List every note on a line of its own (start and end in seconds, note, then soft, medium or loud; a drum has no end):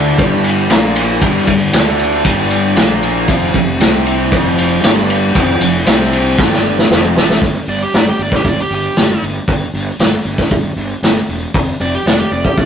0.00 0.15 D2 medium
0.00 0.18 D3 medium
0.00 0.18 D4 medium
0.18 0.67 G1 medium
0.18 0.70 G2 medium
0.18 0.70 G3 medium
0.18 kick loud
0.18 ride medium
0.44 ride medium
0.70 1.18 A#1 medium
0.70 1.21 A#2 medium
0.70 1.22 A#3 medium
0.70 snare loud
0.70 ride medium
0.96 ride medium
1.21 1.46 G1 medium
1.21 1.47 G2 medium
1.21 1.47 G3 loud
1.21 kick loud
1.21 ride medium
1.47 1.72 G1 medium
1.47 1.69 G2 medium
1.47 kick medium
1.47 ride medium
1.73 2.21 D2 medium
1.73 2.24 D3 medium
1.73 2.25 D4 loud
1.73 snare loud
1.73 ride loud
1.99 ride medium
2.25 2.73 G1 medium
2.25 2.76 G2 medium
2.25 2.76 G3 loud
2.25 kick loud
2.25 ride medium
2.50 ride medium
2.76 3.25 A#1 medium
2.76 3.27 A#2 medium
2.76 3.28 A#3 medium
2.76 snare loud
2.76 ride medium
3.03 ride medium
3.27 3.52 F1 medium
3.27 3.53 F2 medium
3.27 3.53 F3 loud
3.27 kick loud
3.27 ride medium
3.54 3.78 F1 medium
3.54 3.75 F2 medium
3.54 kick medium
3.54 ride medium
3.80 4.28 C2 medium
3.80 4.31 C3 medium
3.80 4.31 C4 medium
3.80 snare loud
3.80 ride medium
4.06 ride medium
4.31 4.80 F1 medium
4.31 4.82 F2 medium
4.31 4.83 F3 loud
4.31 kick loud
4.31 ride medium
4.58 ride medium
4.83 5.32 G1 medium
4.83 5.34 G2 medium
4.83 5.35 G3 medium
4.83 snare loud
4.83 ride medium
5.10 ride medium
5.35 5.59 F1 medium
5.35 5.59 F2 loud
5.35 5.61 F3 loud
5.35 kick loud
5.35 ride medium
5.61 5.85 F1 medium
5.61 5.81 F2 medium
5.61 ride medium
5.86 6.35 C2 medium
5.86 6.37 C3 medium
5.86 6.38 C4 medium
5.86 snare loud
5.86 ride loud
6.13 ride medium
6.38 6.87 G1 medium
6.38 6.89 G2 medium
6.38 6.90 G3 medium
6.38 kick loud
6.38 snare medium
6.52 snare medium
6.78 snare medium
6.90 7.14 F1 medium
6.90 7.15 F2 medium
6.90 7.15 F3 loud
6.90 snare medium
7.16 7.40 A1 medium
7.16 7.41 A2 medium
7.16 7.42 A3 loud
7.16 snare loud
7.30 snare medium
7.42 7.58 G1 medium
7.42 kick loud
7.42 open hi-hat medium
7.67 7.83 G1 medium
7.67 7.81 D5 medium
7.67 open hi-hat medium
7.83 7.94 G4 medium
7.93 8.09 G1 medium
7.93 8.07 D5 medium
7.93 snare loud
7.93 open hi-hat medium
8.09 8.20 G4 medium
8.19 8.35 G1 medium
8.19 8.34 D5 medium
8.19 open hi-hat soft
8.32 8.46 G4 medium
8.32 kick medium
8.32 snare soft
8.44 8.61 G1 medium
8.44 kick medium
8.44 open hi-hat medium
8.48 8.59 D5 medium
8.61 8.72 G4 medium
8.70 8.86 G1 medium
8.70 9.23 G4 medium
8.70 open hi-hat soft
8.96 9.13 G1 medium
8.96 snare loud
8.96 open hi-hat medium
9.22 9.38 G1 medium
9.22 open hi-hat medium
9.47 9.64 G1 medium
9.47 kick loud
9.47 open hi-hat medium
9.73 9.90 G1 medium
9.73 open hi-hat medium
9.99 10.15 G1 medium
9.99 snare loud
9.99 open hi-hat medium
10.25 10.41 G1 medium
10.25 open hi-hat medium
10.38 kick medium
10.38 snare soft
10.51 10.67 G1 medium
10.51 kick medium
10.51 open hi-hat medium
10.76 10.92 G1 medium
10.76 open hi-hat medium
11.02 11.18 G1 medium
11.02 snare loud
11.02 open hi-hat medium
11.28 11.45 E1 medium
11.28 open hi-hat medium
11.54 11.70 F1 medium
11.54 kick loud
11.54 open hi-hat medium
11.80 11.96 F1 medium
11.80 11.94 D5 medium
11.80 open hi-hat medium
11.94 12.06 G4 medium
12.06 12.22 F1 medium
12.06 12.19 D5 medium
12.06 snare loud
12.06 open hi-hat medium
12.19 12.32 G4 medium
12.31 12.47 F1 medium
12.31 12.45 D5 medium
12.31 open hi-hat soft
12.44 12.57 G4 medium
12.44 kick medium
12.57 12.65 F1 medium
12.57 12.65 D5 medium
12.57 kick medium
12.57 open hi-hat medium